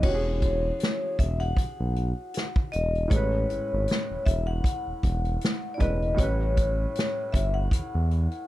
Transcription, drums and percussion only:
0.03 kick, crash
0.42 kick, closed hi-hat
0.80 snare, closed hi-hat
1.19 kick, closed hi-hat
1.40 closed hi-hat
1.57 kick, closed hi-hat
1.96 closed hi-hat
2.34 snare, closed hi-hat
2.56 kick
2.73 closed hi-hat
2.95 closed hi-hat
3.11 kick, closed hi-hat
3.50 closed hi-hat
3.88 snare, closed hi-hat
4.26 kick, closed hi-hat
4.64 kick, closed hi-hat
5.03 kick, closed hi-hat
5.25 closed hi-hat
5.41 snare, closed hi-hat
5.80 kick, closed hi-hat
6.02 closed hi-hat
6.18 kick, closed hi-hat
6.57 kick, closed hi-hat
6.95 snare, closed hi-hat
7.34 kick, closed hi-hat
7.71 kick, closed hi-hat
8.11 closed hi-hat
8.32 closed hi-hat

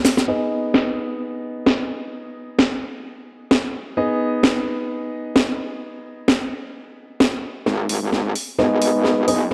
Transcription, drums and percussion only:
0.05 snare, open hi-hat, shaker
0.17 snare, shaker
0.74 snare
1.66 snare
2.59 snare
3.51 snare
4.43 snare
5.36 snare
6.28 snare
7.20 snare
7.66 snare
7.89 open hi-hat
8.12 snare
8.36 open hi-hat
8.59 snare
8.82 open hi-hat
9.05 snare
9.28 open hi-hat

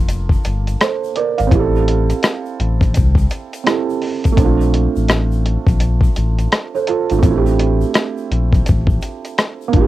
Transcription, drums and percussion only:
0.09 closed hi-hat, shaker
0.29 kick, shaker
0.44 closed hi-hat, shaker
0.67 closed hi-hat, shaker
0.81 cross-stick, closed hi-hat, shaker
1.04 shaker
1.16 closed hi-hat
1.38 closed hi-hat, shaker
1.52 kick, closed hi-hat, shaker
1.75 shaker
1.88 closed hi-hat
2.10 closed hi-hat, shaker
2.23 cross-stick, closed hi-hat, shaker
2.46 shaker
2.60 closed hi-hat
2.81 kick, closed hi-hat, shaker
2.94 kick, closed hi-hat, shaker
3.15 kick, shaker
3.30 closed hi-hat, shaker
3.53 closed hi-hat, shaker
3.66 cross-stick, closed hi-hat, shaker
3.90 shaker
4.02 open hi-hat
4.24 kick, closed hi-hat, shaker
4.37 kick, closed hi-hat, shaker
4.61 shaker
4.74 closed hi-hat
4.96 shaker
5.08 cross-stick, closed hi-hat, shaker
5.32 shaker
5.46 closed hi-hat
5.67 kick, closed hi-hat, shaker
5.80 closed hi-hat, shaker
6.01 kick, shaker
6.15 closed hi-hat, shaker
6.39 closed hi-hat, shaker
6.52 cross-stick, closed hi-hat, shaker
6.75 shaker
6.87 closed hi-hat
7.10 closed hi-hat, shaker
7.23 kick, closed hi-hat, shaker
7.46 shaker
7.60 closed hi-hat
7.81 shaker
7.94 cross-stick, closed hi-hat, shaker
8.17 shaker
8.32 closed hi-hat
8.53 kick, closed hi-hat, shaker
8.66 kick, closed hi-hat, shaker
8.87 kick, shaker
9.01 closed hi-hat, shaker
9.25 closed hi-hat, shaker
9.38 cross-stick, closed hi-hat, shaker
9.61 shaker
9.73 kick, closed hi-hat

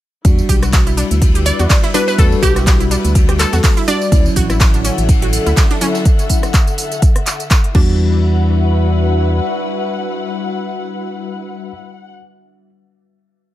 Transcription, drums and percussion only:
0.25 kick, closed hi-hat, ride, tambourine
0.39 tambourine
0.49 kick, open hi-hat, ride, tambourine
0.62 cross-stick, closed hi-hat, ride, tambourine
0.73 kick, snare, clap, closed hi-hat, ride, tambourine
0.87 closed hi-hat, tambourine
0.97 open hi-hat, ride, tambourine
1.11 closed hi-hat, ride, tambourine
1.22 kick, closed hi-hat, ride, tambourine
1.35 closed hi-hat, ride
1.45 open hi-hat, ride, tambourine
1.59 closed hi-hat, tambourine
1.70 kick, snare, clap, closed hi-hat, ride, tambourine
1.83 snare, closed hi-hat
1.94 open hi-hat, ride, tambourine
2.07 snare, tambourine
2.18 kick, closed hi-hat, ride, tambourine
2.32 tambourine
2.43 kick, open hi-hat, ride, tambourine
2.56 cross-stick, closed hi-hat, tambourine
2.66 kick, snare, clap, closed hi-hat, ride, tambourine
2.80 closed hi-hat, tambourine
2.91 open hi-hat, ride, tambourine
3.05 closed hi-hat, tambourine
3.15 kick, closed hi-hat, ride, tambourine
3.29 cross-stick, closed hi-hat, ride
3.39 clap, open hi-hat, ride, tambourine
3.53 snare, closed hi-hat, tambourine
3.64 kick, snare, clap, closed hi-hat, open hi-hat, tambourine
3.77 closed hi-hat
3.88 open hi-hat, ride, tambourine
4.02 tambourine
4.12 kick, closed hi-hat, ride, tambourine
4.26 tambourine
4.36 kick, open hi-hat, ride, tambourine
4.50 cross-stick, closed hi-hat, ride, tambourine
4.60 kick, snare, clap, closed hi-hat, ride, tambourine
4.74 closed hi-hat, tambourine
4.85 open hi-hat, ride, tambourine
4.98 closed hi-hat, ride, tambourine
5.09 kick, closed hi-hat, ride, tambourine
5.22 closed hi-hat, ride
5.32 open hi-hat, ride, tambourine
5.46 closed hi-hat, tambourine
5.57 kick, snare, clap, closed hi-hat, ride, tambourine
5.71 snare, closed hi-hat
5.81 open hi-hat, ride, tambourine
5.94 snare, tambourine
6.05 kick, closed hi-hat, tambourine
6.19 closed hi-hat, tambourine
6.30 kick, open hi-hat, tambourine
6.43 cross-stick, closed hi-hat, tambourine
6.54 kick, clap, closed hi-hat, tambourine
6.67 closed hi-hat, tambourine
6.78 open hi-hat, tambourine
6.92 closed hi-hat, tambourine
7.02 kick, closed hi-hat, tambourine
7.16 cross-stick, closed hi-hat
7.26 clap, open hi-hat, tambourine
7.40 closed hi-hat, tambourine
7.51 kick, clap, closed hi-hat, tambourine
7.64 closed hi-hat
7.75 kick, crash

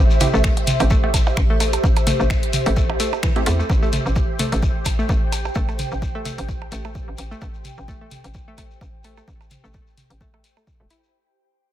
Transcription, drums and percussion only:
0.10 shekere
0.21 open hi-hat, mid tom, percussion blips, shekere
0.34 shekere
0.44 finger snap, kick, shekere
0.57 closed hi-hat, percussion blips
0.67 open hi-hat, mid tom, shekere
0.80 open hi-hat, percussion blips, shekere
0.90 kick, shekere
1.04 percussion blips
1.14 kick, open hi-hat, percussion blips, shekere
1.26 percussion blips, shekere
1.37 finger snap, kick, shekere
1.60 open hi-hat, percussion blips, shekere
1.73 closed hi-hat, percussion blips, shekere
1.84 kick, percussion blips, shekere
1.97 closed hi-hat, percussion blips, shekere
2.07 open hi-hat, mid tom, percussion blips, shekere
2.20 shekere
2.30 finger snap, kick, percussion blips, shekere
2.43 closed hi-hat
2.53 open hi-hat, mid tom, shekere
2.66 open hi-hat, percussion blips, shekere
2.76 kick, shekere
2.90 percussion blips
3.00 open hi-hat, shekere
3.13 percussion blips, shekere
3.23 finger snap, kick, shekere
3.36 closed hi-hat, percussion blips
3.46 open hi-hat, shekere
3.60 shekere
3.70 kick, shekere
3.83 shekere
3.93 open hi-hat, mid tom, shekere
4.06 shekere
4.16 kick, shekere
4.39 open hi-hat, mid tom, shekere
4.52 open hi-hat, shekere
4.62 kick, shekere
4.86 kick, open hi-hat, percussion blips, shekere
4.99 shekere
5.09 kick, shekere
5.32 open hi-hat, percussion blips, shekere
5.45 percussion blips, shekere
5.55 kick, shekere
5.69 percussion blips, shekere
5.79 open hi-hat, mid tom, shekere
5.92 shekere
6.02 kick, shekere
6.25 open hi-hat, mid tom, shekere
6.38 open hi-hat, shekere
6.49 kick, shekere
6.62 percussion blips
6.72 open hi-hat, shekere
6.85 percussion blips, shekere
6.95 kick, shekere
7.18 open hi-hat, shekere
7.31 shekere
7.42 kick, shekere
7.54 shekere
7.65 open hi-hat, mid tom, shekere
7.77 shekere
7.88 kick, shekere
8.11 open hi-hat, mid tom, shekere
8.24 open hi-hat, shekere
8.34 kick, shekere
8.58 kick, open hi-hat, percussion blips, shekere
8.71 shekere
8.81 kick, shekere
9.04 open hi-hat, percussion blips, shekere
9.17 percussion blips, shekere
9.28 kick, shekere
9.41 percussion blips, shekere
9.51 open hi-hat, mid tom, shekere
9.64 shekere
9.73 kick, shekere
9.87 shekere
9.97 open hi-hat, mid tom, shekere
10.10 open hi-hat, shekere
10.21 kick, shekere
10.34 percussion blips
10.44 open hi-hat, shekere
10.57 percussion blips, shekere
10.67 kick, shekere
10.90 open hi-hat, shekere
11.04 shekere

